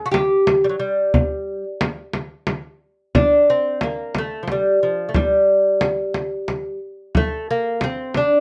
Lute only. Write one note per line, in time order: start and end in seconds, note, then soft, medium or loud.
0.06 0.11 F#4 medium
0.12 0.64 G4 medium
0.64 0.69 G3 medium
0.69 0.77 F#3 medium
0.80 1.63 G3 medium
3.15 3.49 D4 medium
3.50 3.83 C4 medium
3.83 4.16 A#3 medium
4.18 4.43 A3 medium
4.43 4.49 F3 medium
4.52 4.82 G3 medium
4.83 5.09 F3 medium
5.09 5.15 A3 medium
5.16 6.78 G3 medium
7.17 7.50 A3 loud
7.51 7.83 A#3 medium
7.84 8.17 C4 medium
8.17 8.40 D4 medium